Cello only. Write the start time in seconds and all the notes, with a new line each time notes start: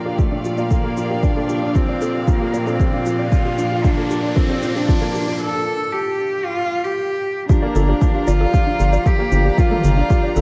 Already playing: A#3
0.19 A3
0.58 A#3
1.23 D4
1.75 C4
2.27 A#3
2.67 C4
3.32 F4
3.84 D4
4.36 C4
4.75 D4
5.41 A4
5.92 G4
6.45 F4
6.84 G4
7.49 D4
8.28 F4
9.07 G4
9.59 F4
10.37 D4